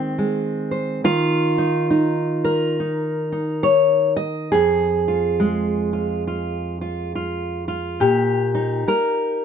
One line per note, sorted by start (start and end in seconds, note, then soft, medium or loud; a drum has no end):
0.00 1.03 D#3 medium
0.00 0.17 G#3 soft
0.00 1.04 C4 soft
0.00 0.70 C5 soft
0.18 1.05 G#3 soft
0.71 1.00 C5 soft
1.04 4.52 D#3 medium
1.04 2.78 F4 loud
1.58 1.89 D#4 soft
1.90 2.78 D#4 medium
2.44 4.51 A#4 medium
2.80 3.31 D#4 soft
3.32 4.49 D#4 soft
3.63 4.16 C#5 medium
4.16 4.51 D#5 medium
4.52 8.01 F2 medium
4.52 8.00 G#4 medium
5.08 5.92 F4 soft
5.40 7.97 G#3 medium
5.93 6.26 F4 soft
6.27 6.80 F4 soft
6.81 7.14 F4 soft
7.15 7.67 F4 soft
7.68 8.01 F4 soft
8.00 8.86 A#2 medium
8.00 9.45 G4 medium
8.55 9.45 D#4 medium
8.88 9.45 A#4 medium
8.88 muted steel-string acoustic guitar stroke medium